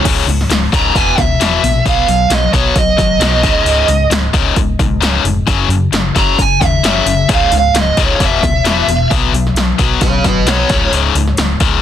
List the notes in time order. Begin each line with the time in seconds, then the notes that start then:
0.05 C#1 C#2 G#2 C#3, kick, open hi-hat, crash
0.26 C#2 G#2, open hi-hat
0.41 snare
0.49 C#1 C#2 G#2, snare, open hi-hat
0.72 C#1 C#2 G#2 C#3 A#5, kick, open hi-hat
0.94 E1 E2 B2 E3 G#5, kick, open hi-hat
1.17 C#2 E2 B2 E5, kick, snare, open hi-hat
1.40 E1 E2 B2 E3, snare, open hi-hat
1.63 A#1 E2 B2, open hi-hat
1.85 B1 B2 F#3 B3 F5, kick, open hi-hat
2.07 B1 B2 F#3 F5, open hi-hat
2.30 B1 B2 F#3, snare, open hi-hat
2.34 D#5
2.53 B1 B2 F#3 B3 C#5, kick, open hi-hat
2.75 B1 B2 F#3 D#5, kick, open hi-hat
2.97 G#1 B2 F#3, kick, open hi-hat
3.19 B1 B2 F#3 B3, snare, open hi-hat
3.43 C#1 C#2 G#2 C#3, kick, open hi-hat
3.64 C#1 C#2 G#2 C#3, open hi-hat
3.88 C#2 G#2, open hi-hat
4.10 C#2 G#2, snare, open hi-hat
4.33 C#1 C#2 G#2 C#3, kick, open hi-hat
4.56 C#1 C#2 G#2, kick, open hi-hat
4.79 B1 C#2 G#2, kick, open hi-hat
4.99 C#1 C#2 G#2 C#3, open hi-hat
5.03 snare
5.23 F1 C#2 G#2, open hi-hat
5.47 F#1 F#2 C#3 F#3, kick, open hi-hat
5.68 F#2 C#3, open hi-hat
5.91 F#1 F#2 C#3, snare, open hi-hat
6.15 F#1 F#2 C#3 F#3 A#5, kick, open hi-hat
6.38 F#1 F#2 C#3 G#5, kick, open hi-hat
6.61 D#2 F#2 C#3 E5, kick, snare, open hi-hat
6.83 F#1 F#2 C#3 F#3, snare, open hi-hat
7.05 F#1 F#2 C#3, open hi-hat
7.29 C#1 C#2 G#2 C#3, kick, open hi-hat
7.34 F5
7.51 C#2 G#2, open hi-hat
7.58 F5
7.73 C#1 C#2 G#2, snare, open hi-hat
7.79 D#5
7.97 C#1 C#2 G#2 C#3, kick, open hi-hat
8.03 C#5
8.19 E1 E2 B2 E3, kick, open hi-hat
8.25 E5
8.42 C#2 E2 B2, kick, snare, open hi-hat
8.64 E1 E2 B2 E3, snare, open hi-hat
8.87 E1 E2 B2, open hi-hat
9.10 B1 B2 F#3 B3, kick, open hi-hat
9.31 B1 B2 F#3, open hi-hat
9.47 snare
9.53 B1 B2 F#3, snare, open hi-hat
9.78 B1 B2 F#3 B3, kick, open hi-hat
10.01 B1 B2 F#3 G#4 C#5, kick, open hi-hat
10.24 G#1 B2 F#3 F#4 B4, kick, open hi-hat
10.45 B1 B2 F#3 B3, snare, open hi-hat
10.49 C#5
10.69 C#1 C#2 G#2 C#3, kick, open hi-hat
10.91 C#1 C#2 G#2 C#3, open hi-hat
11.15 C#2 G#2, open hi-hat
11.28 snare
11.37 C#2 G#2, snare, open hi-hat
11.60 C#1 C#2 G#2 C#3, kick, open hi-hat